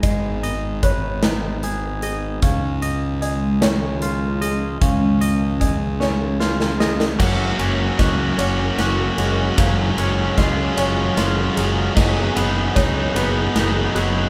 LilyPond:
<<
  \new Staff \with { instrumentName = "Felt piano" } { \time 6/8 \key fis \major \tempo 4. = 50 dis''4 cis''8 b'4 gis'8 | eis''4 dis''8 cis''4 gis'8 | eis''4 dis''8 cis''4 gis'8 | fis''4 dis''8 cis''4 gis'8 |
eis''4 dis''8 cis''4 gis'8 | dis''4 cis''8 b'4 gis'8 | }
  \new Staff \with { instrumentName = "Ambient pad" } { \time 6/8 \key fis \major << { r2. | eis'2. | dis'2. | gis''2.~ |
gis''2. | b''2. | } \\ { <gis b dis'>2. | <dis eis gis cis'>2.~ | <dis eis gis cis'>2. | <fis' ais' cis''>2. |
<eis' gis' cis''>2. | <gis' b' dis''>2. | } >> }
  \new Staff \with { instrumentName = "Clean electric guitar" } { \time 6/8 \key fis \major <gis dis' gis' b' dis''>8 dis''8 b'8 dis'8 gis'8 dis''8 | cis'8 dis''8 gis'8 cis'8 eis'8 dis''8 | cis'8 dis''8 gis'8 cis'8 eis'8 dis''8 | fis8 cis'8 fis'8 cis'8 fis'8 gis8 |
fis8 cis'8 eis'8 cis'8 eis'8 fis8 | fis8 b8 dis'8 b8 dis'8 fis8 | }
  \new Staff \with { instrumentName = "Overdriven electric guitar" } { \time 6/8 \key fis \major r2. | r2. | r2. | <fis ais cis' fis'>8 <fis ais cis' fis'>8 <fis ais cis' fis'>8 <fis ais cis' fis'>8 <fis ais cis' fis'>8 <fis ais cis' fis'>8 |
<fis gis cis' eis'>8 <fis gis cis' eis'>8 <fis gis cis' eis'>8 <fis gis cis' eis'>8 <fis gis cis' eis'>8 <fis gis cis' eis'>8 | <fis b dis' gis'>8 <fis b dis' gis'>8 <fis b dis' gis'>8 <fis b dis' gis'>8 <fis b dis' gis'>8 <fis b dis' gis'>8 | }
  \new Staff \with { instrumentName = "Fingered electric bass" } { \clef bass \time 6/8 \key fis \major gis,,2. | cis,2. | cis,2. | fis,,8 fis,,8 cis,8 fis,,8 fis,,8 fis,,8 |
fis,,8 fis,,8 cis,8 fis,,8 fis,,8 fis,,8 | fis,,8 fis,,8 cis,8 fis,,8 fis,,8 fis,,8 | }
  \new DrumStaff \with { instrumentName = "Drums" } \drummode { \time 6/8 <hh bd>8 hh8 <hh bd>8 <hh sn>8 hh8 hh8 | <hh bd>8 hh8 hh8 <hh sn>8 hh8 hh8 | <hh bd>8 hh8 <hh bd>8 sn8 sn16 sn16 sn16 sn16 | <cymc bd sn>8 cymr8 <bd cymr sn>8 cymr8 <cymr sn>8 cymr8 |
<bd cymr sn>8 cymr8 <bd cymr sn>8 cymr8 <cymr sn>8 cymr8 | <cymc bd sn>8 cymr8 <bd cymr sn>8 cymr8 <cymr sn>8 cymr8 | }
>>